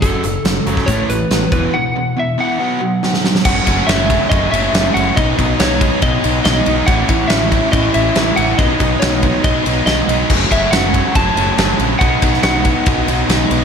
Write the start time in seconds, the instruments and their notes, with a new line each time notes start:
0.02 picked electric bass F#1, overdriven electric guitar F#2 C#3 F#3, electric slide guitar A4, kick, closed hi-hat
0.23 picked electric bass F#1, overdriven electric guitar F#2 C#3, closed hi-hat
0.45 picked electric bass F#1, overdriven electric guitar F#2 C#3, snare, closed hi-hat
0.66 picked electric bass F#1, overdriven electric guitar F#2 C#3 F#3, closed hi-hat
0.77 kick, snare
0.86 picked electric bass A1, overdriven electric guitar A2 E3 A3, electric slide guitar C#5, kick, closed hi-hat
1.10 picked electric bass A1, overdriven electric guitar A2 E3, electric slide guitar B4, closed hi-hat
1.31 picked electric bass A1, overdriven electric guitar A2 E3, snare, closed hi-hat
1.52 picked electric bass E1, overdriven electric guitar E2 B2 E3, electric slide guitar B4, kick, closed hi-hat
1.74 overdriven electric guitar E2 B2, electric slide guitar F#5
1.96 overdriven electric guitar E2 B2
2.16 overdriven electric guitar E2 B2, electric slide guitar E5
2.38 overdriven electric guitar E2 B2 E3, electric slide guitar F#5
2.59 overdriven electric guitar B2 F#3 B3
2.80 overdriven electric guitar B2 F#3
3.03 overdriven electric guitar B2 F#3, snare
3.14 snare
3.24 overdriven electric guitar B2 F#3, snare
3.35 snare
3.45 picked electric bass F#1, overdriven electric guitar F#2 C#3 F#3 A3 C#4, electric slide guitar F#5, kick, crash
3.67 picked electric bass F#1, overdriven electric guitar F#3 A3 C#4, kick, ride
3.87 picked electric bass F#1, overdriven electric guitar C#3 F#3 A3 C#4, electric slide guitar E5, snare, ride
4.08 overdriven electric guitar F#2 C#3 F#3 A3 C#4, kick, ride
4.29 picked electric bass F#1, overdriven electric guitar C#3 F#3 A3 C#4, electric slide guitar D#5, kick, ride
4.51 picked electric bass F#1, overdriven electric guitar F#3 A3 C#4, electric slide guitar E5, ride
4.71 picked electric bass F#1, overdriven electric guitar F#2 C#3 F#3 A3 C#4, ride
4.75 snare
4.94 picked electric bass F#1, overdriven electric guitar F#3 A3 C#4, electric slide guitar F#5, ride
5.16 picked electric bass B1, overdriven electric guitar B2 F#3 B3 D#4, electric slide guitar D#5, kick, ride
5.37 picked electric bass B1, overdriven electric guitar F#3 B3 D#4, kick, ride
5.60 picked electric bass B1, overdriven electric guitar B2 F#3 B3 D#4, electric slide guitar C#5, snare, ride
5.81 overdriven electric guitar B2 F#3 B3 D#4, kick, ride
6.02 picked electric bass B1, overdriven electric guitar B2 F#3 B3 D#4, electric slide guitar D#5, kick, ride
6.23 picked electric bass B1, overdriven electric guitar F#3 B3 D#4, ride
6.45 picked electric bass B1, overdriven electric guitar B2 F#3 B3 D#4, electric slide guitar D#5, snare, ride
6.66 picked electric bass B1, overdriven electric guitar F#3 B3 D#4, ride
6.86 picked electric bass A1, overdriven electric guitar A2 E3 A3 C#4 E4, electric slide guitar F#5, kick, ride
7.08 picked electric bass A1, overdriven electric guitar A3 C#4 E4, kick, ride
7.28 picked electric bass A1, overdriven electric guitar E3 A3 C#4 E4, electric slide guitar E5, snare, ride
7.50 overdriven electric guitar A2 E3 A3 C#4 E4, kick, ride
7.71 picked electric bass A1, overdriven electric guitar E3 A3 C#4 E4, electric slide guitar D#5, kick, ride
7.94 picked electric bass A1, overdriven electric guitar A3 C#4 E4, electric slide guitar E5, ride
8.15 picked electric bass A1, overdriven electric guitar A2 E3 A3 C#4 E4, snare, ride
8.36 picked electric bass A1, overdriven electric guitar A3 C#4 E4, electric slide guitar F#5, ride
8.58 picked electric bass B1, overdriven electric guitar B2 F#3 B3 D#4, electric slide guitar D#5, kick, ride
8.80 picked electric bass B1, overdriven electric guitar F#3 B3 D#4, kick, ride
9.00 picked electric bass B1, overdriven electric guitar B2 F#3 B3, electric slide guitar C#5, snare, ride
9.04 overdriven electric guitar D#4
9.23 overdriven electric guitar B2 F#3 B3 D#4, kick, ride
9.44 picked electric bass B1, overdriven electric guitar B2 F#3 B3 D#4, electric slide guitar D#5, kick, ride
9.66 picked electric bass B1, overdriven electric guitar F#3 B3 D#4, ride
9.86 picked electric bass B1, overdriven electric guitar B2 F#3 B3 D#4, electric slide guitar D#5, snare, ride
10.08 picked electric bass B1, overdriven electric guitar F#3 B3 D#4, ride
10.30 picked electric bass F#1, overdriven electric guitar F#2 C#3 F#3 A3 C#4, kick, crash
10.51 picked electric bass F#1, overdriven electric guitar F#3 A3 C#4, electric slide guitar E5, kick, ride
10.71 picked electric bass F#1, overdriven electric guitar C#3 F#3 A3, electric slide guitar F#5, snare, ride
10.75 overdriven electric guitar C#4
10.94 overdriven electric guitar F#2 C#3 F#3 A3 C#4, kick, ride
11.15 picked electric bass F#1, overdriven electric guitar C#3 F#3 A3 C#4, electric slide guitar A5, kick, ride
11.36 picked electric bass F#1, overdriven electric guitar F#3 A3 C#4, ride
11.57 picked electric bass F#1, overdriven electric guitar F#2 C#3 F#3 A3 C#4, snare, ride
11.79 picked electric bass A#1, overdriven electric guitar F#3 A3 C#4, ride
11.99 picked electric bass B1, overdriven electric guitar B2 F#3 B3 D#4, electric slide guitar F#5, kick, ride
12.22 picked electric bass B1, overdriven electric guitar F#3 B3 D#4, kick, ride
12.33 snare
12.43 picked electric bass B1, overdriven electric guitar B2 F#3 B3 D#4, electric slide guitar F#5, snare, ride
12.64 overdriven electric guitar B2 F#3 B3 D#4, kick, ride
12.86 picked electric bass B1, overdriven electric guitar B2 F#3 B3 D#4, kick, ride
13.07 picked electric bass B1, overdriven electric guitar F#3 B3 D#4, ride
13.28 picked electric bass B1, overdriven electric guitar B2 F#3 B3 D#4, snare, ride
13.50 picked electric bass B1, overdriven electric guitar F#3 B3 D#4, ride